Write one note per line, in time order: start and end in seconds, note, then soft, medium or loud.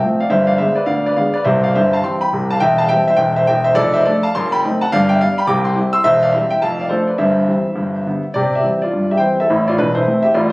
0.00 0.18 F3 soft
0.00 0.19 A3 soft
0.00 0.19 C4 soft
0.00 0.19 E5 medium
0.00 0.21 G5 medium
0.20 0.31 D5 medium
0.20 0.31 F5 medium
0.29 0.55 G1 medium
0.29 0.55 G2 medium
0.29 0.48 C5 medium
0.29 0.49 E5 medium
0.47 0.58 D5 medium
0.47 0.58 F5 medium
0.58 0.75 D3 soft
0.58 0.75 G#3 soft
0.58 0.75 B3 soft
0.58 0.76 C5 medium
0.58 0.77 E5 medium
0.75 0.87 B4 medium
0.75 0.86 D5 medium
0.86 1.12 D2 medium
0.86 1.12 D3 medium
0.86 1.05 D5 medium
0.86 1.06 F5 medium
1.06 1.17 B4 medium
1.06 1.16 D5 medium
1.16 1.33 D3 soft
1.16 1.32 G#3 soft
1.16 1.32 B3 soft
1.16 1.32 D5 medium
1.16 1.35 F5 medium
1.34 1.45 B4 medium
1.34 1.45 D5 medium
1.45 1.69 C2 medium
1.45 1.69 C3 medium
1.45 1.63 C5 medium
1.45 1.64 E5 medium
1.64 1.74 D5 medium
1.64 1.74 F5 medium
1.75 1.98 G1 medium
1.75 1.98 G2 medium
1.75 1.92 C5 medium
1.75 1.93 E5 medium
1.93 2.03 F5 medium
1.93 2.03 A5 medium
2.03 2.19 E3 soft
2.03 2.19 G3 soft
2.03 2.20 C4 soft
2.03 2.20 G5 medium
2.03 2.22 C6 medium
2.21 2.48 G5 medium
2.21 2.50 B5 medium
2.33 2.56 C2 medium
2.33 2.55 C3 medium
2.50 2.61 F5 medium
2.50 2.61 A5 loud
2.60 2.85 E1 medium
2.60 2.86 E2 medium
2.60 2.79 E5 medium
2.60 2.79 G5 loud
2.78 2.89 F5 medium
2.78 2.89 A5 loud
2.89 3.05 E3 soft
2.89 3.06 G3 medium
2.89 3.05 C4 soft
2.89 3.06 E5 medium
2.89 3.07 G5 loud
3.08 3.19 C5 medium
3.08 3.16 E5 loud
3.17 3.42 E1 medium
3.17 3.42 E2 medium
3.17 3.35 E5 medium
3.17 3.36 G5 loud
3.36 3.47 C5 medium
3.36 3.47 E5 medium
3.47 3.71 E1 medium
3.47 3.71 E2 medium
3.47 3.63 E5 medium
3.47 3.65 G5 loud
3.64 3.75 C5 medium
3.64 3.75 E5 loud
3.75 3.99 F1 medium
3.75 4.00 F2 loud
3.75 3.93 A4 medium
3.75 3.94 D5 loud
3.94 4.04 C5 medium
3.94 4.04 E5 loud
4.05 4.21 A3 medium
4.05 4.21 D4 medium
4.05 4.22 A4 medium
4.05 4.23 D5 medium
4.23 4.33 F5 medium
4.23 4.33 A5 loud
4.35 4.59 F#1 medium
4.35 4.59 F#2 medium
4.35 4.52 A5 medium
4.35 4.52 C6 loud
4.52 4.79 G5 medium
4.52 4.80 B5 loud
4.64 4.79 A3 soft
4.64 4.80 C4 medium
4.64 4.79 D#4 medium
4.81 4.91 F#5 medium
4.81 4.91 A5 loud
4.92 5.16 G1 medium
4.92 5.16 G2 medium
4.92 5.09 D5 medium
4.92 5.10 F5 loud
5.09 5.19 E5 medium
5.09 5.19 G5 loud
5.21 5.37 G3 medium
5.21 5.37 B3 soft
5.21 5.37 D4 medium
5.21 5.38 D5 medium
5.21 5.38 F5 loud
5.38 5.47 G5 medium
5.38 5.48 B5 loud
5.47 5.72 C2 medium
5.47 5.72 C3 medium
5.47 5.65 G5 medium
5.47 5.66 D6 loud
5.65 5.93 G5 medium
5.65 5.93 C6 medium
5.75 5.91 G3 medium
5.75 5.92 C4 soft
5.75 5.92 E4 soft
5.93 6.04 C6 medium
5.93 6.04 E6 loud
6.04 6.29 E1 medium
6.04 6.30 E2 medium
6.04 6.23 C5 medium
6.04 6.23 E5 loud
6.23 6.33 D5 medium
6.23 6.33 F5 medium
6.33 6.49 G3 medium
6.33 6.49 C4 medium
6.33 6.50 E4 medium
6.33 6.51 C5 medium
6.33 6.50 E5 medium
6.50 6.61 E5 medium
6.50 6.62 G5 loud
6.62 6.86 F1 medium
6.62 6.87 F2 medium
6.62 6.78 F5 medium
6.62 6.80 A5 loud
6.80 6.91 D5 medium
6.80 6.91 F5 medium
6.89 7.06 F3 soft
6.89 7.07 A3 soft
6.89 7.07 D4 soft
6.89 7.08 A4 medium
6.89 7.08 C5 medium
7.07 7.19 B4 soft
7.07 7.19 D5 medium
7.18 7.43 G1 medium
7.18 7.43 G2 medium
7.18 8.20 C5 medium
7.18 8.23 E5 medium
7.47 7.63 E3 soft
7.47 7.64 G3 soft
7.47 7.64 C4 soft
7.75 8.00 G1 medium
7.75 8.00 G2 medium
8.06 8.22 D3 soft
8.06 8.22 G3 soft
8.06 8.23 B3 soft
8.34 8.60 C3 medium
8.34 8.53 G4 medium
8.34 8.53 D5 medium
8.55 8.81 G4 soft
8.55 8.82 E5 medium
8.63 8.79 E3 soft
8.63 8.79 G3 soft
8.63 8.79 C4 soft
8.82 9.09 F4 medium
8.82 9.10 D5 medium
8.93 9.17 G2 soft
9.11 9.21 G4 soft
9.11 9.21 E5 medium
9.17 9.35 E3 soft
9.17 9.36 G3 soft
9.17 9.35 C4 soft
9.17 9.37 C5 medium
9.17 9.37 G5 medium
9.40 9.67 A4 medium
9.40 9.68 E5 medium
9.50 9.73 A1 medium
9.50 9.73 A2 medium
9.68 9.78 F4 medium
9.68 9.78 D5 medium
9.78 10.01 E1 medium
9.78 10.01 E2 medium
9.78 9.95 D4 medium
9.78 9.97 B4 medium
9.95 10.23 E4 medium
9.95 10.24 C5 medium
10.06 10.22 E3 soft
10.06 10.22 A3 soft
10.06 10.22 C4 soft
10.23 10.34 G4 medium
10.23 10.34 E5 medium
10.34 10.52 A1 medium
10.34 10.52 A2 medium
10.34 10.52 F4 medium
10.34 10.52 D5 medium